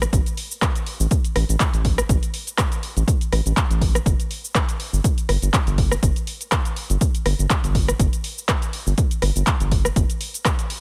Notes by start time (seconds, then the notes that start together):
0.02 cross-stick, closed hi-hat, shaker
0.13 A1, kick, closed hi-hat, shaker
0.26 closed hi-hat, shaker
0.37 open hi-hat
0.51 shaker
0.62 kick, cross-stick, clap, closed hi-hat, shaker
0.75 closed hi-hat, shaker
0.86 open hi-hat
1.00 A1, shaker
1.11 kick, closed hi-hat, shaker
1.25 closed hi-hat, shaker
1.36 A1, cross-stick, open hi-hat
1.49 A1, closed hi-hat, shaker
1.60 kick, clap, closed hi-hat, shaker
1.74 A1, closed hi-hat, shaker
1.85 kick, open hi-hat
1.98 cross-stick, shaker
2.09 A1, kick, closed hi-hat, shaker
2.23 closed hi-hat, shaker
2.34 open hi-hat
2.47 closed hi-hat, shaker
2.58 kick, cross-stick, clap, closed hi-hat, shaker
2.72 closed hi-hat, shaker
2.83 open hi-hat
2.97 A1, closed hi-hat, shaker
3.08 kick, closed hi-hat, shaker
3.21 closed hi-hat, shaker
3.32 A1, cross-stick, open hi-hat
3.46 A1, closed hi-hat, shaker
3.57 kick, clap, closed hi-hat, shaker
3.70 A1, closed hi-hat, shaker
3.81 kick, open hi-hat
3.95 cross-stick, closed hi-hat, shaker
4.06 G1, kick, closed hi-hat, shaker
4.20 closed hi-hat, shaker
4.31 open hi-hat
4.45 shaker
4.55 kick, cross-stick, clap, closed hi-hat, shaker
4.69 closed hi-hat, shaker
4.80 open hi-hat
4.93 G1, shaker
5.04 kick, closed hi-hat, shaker
5.18 closed hi-hat, shaker
5.29 G1, cross-stick, open hi-hat
5.42 G1, closed hi-hat, shaker
5.53 kick, clap, closed hi-hat, shaker
5.67 G1, closed hi-hat, shaker
5.78 kick, open hi-hat
5.91 cross-stick, shaker
6.03 G1, kick, closed hi-hat, shaker
6.16 closed hi-hat, shaker
6.27 open hi-hat
6.41 closed hi-hat, shaker
6.52 kick, cross-stick, clap, closed hi-hat, shaker
6.65 closed hi-hat, shaker
6.76 open hi-hat
6.90 G1, closed hi-hat, shaker
7.01 kick, closed hi-hat, shaker
7.15 closed hi-hat, shaker
7.26 G1, cross-stick, open hi-hat
7.39 G1, closed hi-hat, shaker
7.50 kick, clap, closed hi-hat, shaker
7.64 G1, closed hi-hat, shaker
7.75 kick, open hi-hat
7.88 cross-stick, closed hi-hat, shaker
7.99 G1, kick, closed hi-hat, shaker
8.13 closed hi-hat, shaker
8.24 open hi-hat
8.38 shaker
8.49 kick, cross-stick, clap, closed hi-hat, shaker
8.62 closed hi-hat, shaker
8.73 open hi-hat
8.87 G1, shaker
8.98 kick, closed hi-hat, shaker
9.11 closed hi-hat, shaker
9.22 G1, cross-stick, open hi-hat
9.36 G1, closed hi-hat, shaker
9.47 kick, clap, closed hi-hat, shaker
9.60 G1, closed hi-hat, shaker
9.71 kick, open hi-hat
9.85 cross-stick, shaker
9.96 G1, kick, closed hi-hat, shaker
10.10 closed hi-hat, shaker
10.21 open hi-hat
10.34 closed hi-hat, shaker
10.45 kick, cross-stick, clap, closed hi-hat, shaker
10.59 closed hi-hat, shaker
10.70 open hi-hat